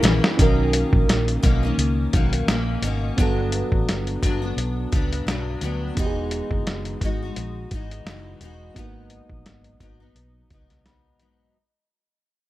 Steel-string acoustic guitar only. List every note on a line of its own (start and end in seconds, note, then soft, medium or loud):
0.03 0.38 F#2 medium
0.03 0.39 E3 medium
0.03 0.39 A#3 medium
0.03 0.40 C#4 medium
0.40 1.42 D#3 medium
0.40 1.43 A#3 medium
0.40 1.45 C#4 medium
1.43 1.62 B2 medium
1.43 1.63 D#3 medium
1.43 1.63 A#3 medium
1.43 1.62 C#4 medium
1.63 2.13 D#3 soft
1.63 2.14 A#3 medium
1.63 2.13 C#4 medium
2.13 2.48 B2 medium
2.13 2.48 D#3 medium
2.13 2.49 A#3 medium
2.13 2.50 C#4 medium
2.49 2.83 D#3 medium
2.49 2.84 A#3 medium
2.49 2.85 C#4 medium
2.83 3.18 B2 medium
2.83 3.19 D#3 medium
2.83 3.19 A#3 medium
2.83 3.20 C#4 medium
3.18 4.21 G2 medium
3.18 4.23 F#3 medium
3.18 4.25 B3 medium
3.18 4.24 D4 medium
4.23 4.42 G2 medium
4.23 4.42 F#3 medium
4.23 4.42 B3 medium
4.23 4.41 D4 medium
4.42 4.92 F#3 soft
4.42 4.93 B3 soft
4.42 4.92 D4 medium
4.92 5.25 G2 medium
4.92 5.27 F#3 medium
4.92 5.28 B3 medium
4.92 5.29 D4 medium
5.27 5.61 G2 medium
5.27 5.62 F#3 medium
5.27 5.63 B3 medium
5.27 5.64 D4 medium
5.62 5.97 G2 medium
5.62 5.97 F#3 medium
5.62 5.97 B3 medium
5.62 5.98 D4 medium
5.97 7.01 E3 medium
5.97 7.03 G#3 medium
5.97 7.04 D#4 medium
5.97 7.05 F#4 medium
7.02 7.21 E3 medium
7.02 7.22 G#3 medium
7.02 7.23 D#4 medium
7.02 7.21 F#4 medium
7.23 7.73 G#3 soft
7.23 7.73 D#4 soft
7.23 7.72 F#4 medium
7.72 8.06 E3 medium
7.72 8.07 G#3 medium
7.72 8.08 D#4 medium
7.72 8.09 F#4 medium
8.07 8.41 E3 medium
8.07 8.41 G#3 medium
8.07 8.42 D#4 medium
8.07 8.44 F#4 medium
8.42 8.77 E3 medium
8.42 8.77 G#3 medium
8.42 8.77 D#4 medium
8.42 8.78 F#4 medium
8.77 9.80 G#2 medium
8.77 9.81 F#3 medium
8.77 9.82 B3 medium
8.77 9.83 D#4 medium
9.80 10.00 G#2 medium
9.80 10.00 F#3 medium
9.80 10.01 B3 medium
9.80 9.99 D#4 medium
10.00 10.51 F#3 soft
10.00 10.52 B3 soft
10.00 10.51 D#4 medium
10.51 10.85 G#2 medium
10.51 10.86 F#3 medium
10.51 10.87 B3 medium
10.51 10.87 D#4 medium
10.86 11.18 G#2 medium
10.86 11.19 F#3 medium
10.86 11.20 B3 medium
10.86 11.21 D#4 medium
11.19 11.55 G#2 medium
11.19 11.55 F#3 medium
11.19 11.56 B3 medium
11.19 11.56 D#4 medium